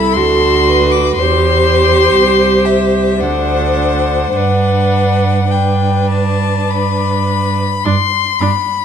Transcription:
Already playing: cello C2, viola E4, violin A4 B5
0.14 cello D2, viola F#4, violin A4 C6
0.69 violin B4
0.92 violin D6
1.15 cello E2, viola G4, violin C6
1.19 violin C5
2.15 cello C2
2.66 violin E5
3.20 cello D2, viola D4, violin C5 F#5
4.36 cello G2, viola D4, violin B4 F#5
5.51 viola D4, violin B4 G5
6.10 violin A5
6.71 violin B5
7.84 cello G2, viola D4, violin C6
8.39 cello G2, viola D4, violin B5

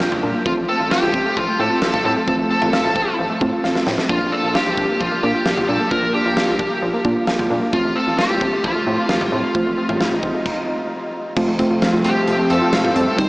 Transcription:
Already playing: synth keys A#3 D4 F4
0.00 analog synth bass A#1, synth pluck F5, snare
0.12 synth pluck F4, mid tom
0.23 analog synth bass A#2, synth pluck D4
0.34 synth pluck A#3
0.46 analog synth bass A1, synth pluck F3, synth keys A3 C4 F4, lead electric guitar F4, kick
0.57 analog synth bass A1, synth pluck A3
0.68 synth pluck C4, lead electric guitar A4
0.80 analog synth bass A1, synth pluck F4
0.91 lead electric guitar G4, synth pluck F5, snare
1.03 analog synth bass A1, synth pluck F4
1.14 analog synth bass A1, synth pluck C4, kick
1.25 synth pluck A3
1.37 analog synth bass A1, synth pluck F3, lead electric guitar F4, kick
1.48 synth pluck A3
1.59 analog synth bass A2, synth keys A3 C4 F4, synth pluck C4, lead electric guitar A4
1.71 synth pluck F4
1.82 analog synth bass A1, synth pluck F5, snare
1.93 synth pluck F4, mid tom
2.05 analog synth bass A2, synth pluck C4, lead electric guitar A4
2.16 synth pluck A3
2.28 analog synth bass A1, synth pluck F3, synth keys A3 C4 F4, lead electric guitar A4, kick
2.39 analog synth bass A1, synth pluck A3
2.50 synth pluck C4, lead electric guitar A4
2.62 analog synth bass A1, synth pluck F4, mid tom
2.73 synth pluck F5, snare
2.84 analog synth bass A1, synth pluck F4
2.96 analog synth bass A1, synth pluck C4, kick
3.07 synth pluck A3
3.19 analog synth bass A1, synth pluck F3
3.30 synth pluck A3
3.41 analog synth bass A2, synth keys A3 C4 F4, synth pluck C4, kick
3.53 synth pluck F4
3.64 analog synth bass A1, synth pluck F5, snare
3.75 synth pluck F4, snare
3.87 analog synth bass A2, synth pluck C4, snare
3.98 synth pluck A3, snare
4.09 analog synth bass A#1, synth pluck F3, synth keys A#3 D4 F4, lead electric guitar F4, kick
4.21 analog synth bass A#1, synth pluck A#3
4.32 synth pluck D4, lead electric guitar A4
4.43 analog synth bass A#1, synth pluck F4
4.48 lead electric guitar A4
4.55 lead electric guitar G4, synth pluck F5, snare
4.66 analog synth bass A#1, synth pluck F4
4.77 analog synth bass A#1, synth pluck D4, kick
4.89 synth pluck A#3
5.00 analog synth bass A#1, synth pluck F3, lead electric guitar F4, kick
5.12 synth pluck A#3
5.23 analog synth bass A#2, synth keys A#3 D4 F4, synth pluck D4, lead electric guitar G4
5.35 synth pluck F4
5.46 analog synth bass A#1, synth pluck F5, snare
5.57 synth pluck F4, mid tom
5.68 analog synth bass A#2, synth pluck D4, lead electric guitar A4
5.80 synth pluck A#3
5.91 analog synth bass A#1, synth pluck F3, synth keys A#3 D4 F4, lead electric guitar A#4, kick
6.02 analog synth bass A#1, synth pluck A#3
6.14 synth pluck D4, lead electric guitar G4
6.25 analog synth bass A#1, synth pluck F4
6.37 synth pluck F5, snare
6.48 analog synth bass A#1, synth pluck F4
6.59 analog synth bass A#1, synth pluck D4, kick
6.71 synth pluck A#3
6.82 analog synth bass A#1, synth pluck F3
6.93 synth pluck A#3
7.05 analog synth bass A#2, synth keys A#3 D4 F4, synth pluck D4, kick
7.16 synth pluck F4
7.27 analog synth bass A#1, synth pluck F5, snare
7.39 synth pluck F4, mid tom
7.50 analog synth bass A#2, synth pluck D4
7.62 synth pluck A#3
7.73 analog synth bass A1, synth pluck F3, synth keys A3 C4 F4, lead electric guitar F4, kick
7.84 analog synth bass A1, synth pluck A3
7.96 synth pluck C4, lead electric guitar A4
8.07 analog synth bass A1, synth pluck F4
8.18 lead electric guitar G4, synth pluck F5, snare
8.30 analog synth bass A1, synth pluck F4
8.41 analog synth bass A1, synth pluck C4, kick
8.53 synth pluck A3
8.64 analog synth bass A1, synth pluck F3, lead electric guitar F4, kick
8.75 synth pluck A3
8.87 analog synth bass A2, synth keys A3 C4 F4, synth pluck C4
8.98 synth pluck F4
9.09 analog synth bass A1, synth pluck F5, snare
9.21 synth pluck F4, mid tom
9.32 analog synth bass A2, synth pluck C4
9.43 synth pluck A3
9.55 analog synth bass A1, synth pluck F3, synth keys A3 C4 F4, kick
9.66 analog synth bass A1, synth pluck A3
9.78 synth pluck C4
9.89 analog synth bass A1, synth pluck F4, mid tom
10.00 synth pluck F5, snare
10.08 analog synth bass A1, lead electric guitar D#4, synth pluck F4
10.23 analog synth bass A1, synth pluck C4, kick
10.34 synth pluck A3
10.46 kick, crash
11.36 analog synth bass F1, analog synth pad F3 A3 C4, synth pluck F3, synth keys A3 C4 F4, kick, crash
11.48 analog synth bass F1, synth pluck A3
11.59 synth keys A3 C4 F4, synth pluck C4, kick, closed hi-hat
11.71 analog synth bass F1, synth pluck F4
11.82 synth pluck F5, snare, closed hi-hat
11.93 analog synth bass F1, synth pluck F4
12.04 analog synth bass F1, synth pluck C4, lead electric guitar G4, closed hi-hat
12.16 synth pluck A3
12.28 analog synth bass F1, synth pluck F3, closed hi-hat
12.39 synth pluck A3
12.50 analog synth bass F2, synth pluck C4, lead electric guitar A4, closed hi-hat
12.62 synth pluck F4
12.73 analog synth bass F1, synth pluck F5, snare, closed hi-hat
12.84 synth pluck F4, mid tom
12.96 analog synth bass F2, synth pluck C4, closed hi-hat
13.07 synth pluck A3
13.18 analog synth bass C2, synth pluck D#3, analog synth pad D#3 G3 C4, synth keys G3 C4 D#4, lead electric guitar C5, kick, closed hi-hat

